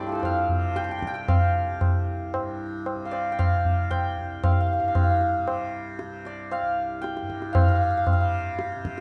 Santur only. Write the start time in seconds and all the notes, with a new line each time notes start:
Already playing: G3 A3 D5 F5
0.00 C4 D4
0.07 F4 G4
0.12 A4 C5
0.19 D5
0.25 F5
0.76 G5
0.84 G5
0.91 G5
0.99 G5
1.07 G5
1.14 G5
1.28 F5
3.05 F5
3.11 D5
3.32 G5
3.39 F5
3.91 G5
4.44 F5
4.52 F5
4.61 F5
4.67 F5
4.73 F5
4.80 F5
4.88 F5
4.95 F5
5.04 F5
5.10 F5
6.26 D5
6.52 F5
7.02 G5
7.53 F5
7.61 F5
7.68 F5
7.75 F5
7.83 F5
7.90 F5
7.97 F5
8.04 F5
8.13 F5
8.20 F5